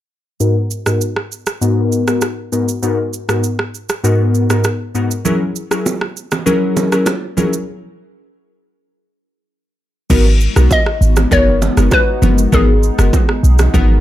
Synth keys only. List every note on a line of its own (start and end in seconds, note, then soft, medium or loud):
0.40 0.56 G#2 medium
0.40 0.56 B3 medium
0.40 0.56 D#4 medium
0.40 0.56 F#4 medium
0.40 0.56 A#4 loud
0.86 1.01 G#2 medium
0.86 1.01 B3 medium
0.86 1.01 D#4 medium
0.86 1.01 F#4 medium
0.86 1.01 A#4 medium
1.61 2.04 G#2 medium
1.61 2.04 B3 medium
1.61 2.04 D#4 medium
1.61 2.04 F#4 medium
1.61 2.04 A#4 loud
2.08 2.22 G#2 medium
2.08 2.22 B3 medium
2.08 2.22 D#4 medium
2.08 2.22 F#4 medium
2.08 2.22 A#4 medium
2.52 2.68 G#2 medium
2.52 2.68 B3 medium
2.52 2.68 D#4 medium
2.52 2.68 F#4 medium
2.52 2.68 A#4 medium
2.82 2.98 G#2 medium
2.82 2.98 B3 medium
2.82 2.98 D#4 medium
2.82 2.98 F#4 medium
2.82 2.98 A#4 loud
3.29 3.43 G#2 medium
3.29 3.43 B3 medium
3.29 3.43 D#4 medium
3.29 3.43 F#4 medium
3.29 3.43 A#4 medium
4.04 4.46 G#2 medium
4.04 4.46 B3 medium
4.04 4.46 D#4 medium
4.04 4.46 F#4 medium
4.04 4.46 A#4 loud
4.50 4.64 G#2 medium
4.50 4.64 B3 medium
4.50 4.64 D#4 medium
4.50 4.64 F#4 medium
4.50 4.65 A#4 medium
4.95 5.10 G#2 medium
4.95 5.10 B3 medium
4.95 5.11 D#4 medium
4.95 5.11 F#4 medium
4.95 5.11 A#4 medium
5.25 5.41 F#3 medium
5.25 5.41 C#4 medium
5.25 5.41 E4 medium
5.25 5.41 G#4 medium
5.25 5.41 A#4 loud
5.71 5.85 F#3 medium
5.71 5.85 C#4 medium
5.71 5.86 E4 medium
5.71 5.86 G#4 medium
5.71 5.86 A#4 medium
6.46 6.88 F#3 medium
6.46 6.88 C#4 medium
6.46 6.89 E4 medium
6.46 6.89 G#4 medium
6.46 6.89 A#4 loud
6.92 7.07 F#3 medium
6.92 7.07 C#4 medium
6.92 7.07 E4 medium
6.92 7.07 G#4 medium
6.92 7.07 A#4 medium
7.37 7.53 F#3 medium
7.37 7.53 C#4 medium
7.37 7.53 E4 medium
7.37 7.53 G#4 medium
7.37 7.53 A#4 medium
10.10 10.25 B3 loud
10.10 10.26 D#4 medium
10.10 10.26 F#4 medium
10.10 10.26 A#4 loud
10.56 10.70 B3 medium
10.56 10.70 D#4 medium
10.56 10.71 F#4 medium
10.56 10.71 A#4 medium
11.31 11.73 B3 medium
11.31 11.74 D#4 medium
11.31 11.74 F#4 medium
11.31 11.74 A#4 loud
11.77 11.92 B3 medium
11.77 11.92 D#4 medium
11.77 11.92 F#4 medium
11.77 11.92 A#4 medium
12.22 12.38 B3 medium
12.22 12.38 D#4 medium
12.22 12.38 F#4 medium
12.22 12.38 A#4 medium
12.52 12.68 B3 medium
12.52 12.68 D#4 medium
12.52 12.68 F#4 medium
12.52 12.68 A#4 loud
12.98 13.13 B3 medium
12.98 13.13 D#4 medium
12.98 13.13 F#4 medium
12.98 13.13 A#4 medium
13.73 14.00 B3 loud
13.73 14.00 D#4 medium
13.73 14.00 F#4 medium
13.73 14.00 A#4 loud